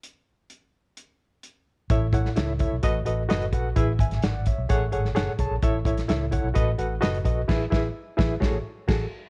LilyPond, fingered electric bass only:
\new Staff \with { instrumentName = "Fingered electric bass" } { \clef bass \time 4/4 \key a \major \tempo 4 = 129 r1 | a,,4 cis,8. b,,16 a,,8 a,,8 fis,,8 bes,,8 | a,,8 gis,,8 gis,,8. b,,16 a,,8 gis,,8 fis,,16 r16 b,,16 bes,,16 | a,,4 cis,8. b,,16 a,,8 a,,8 fis,,8 bes,,8 |
a,,8 a,,8 r8 a,,8 a,,8 r8 a,,8 r8 | }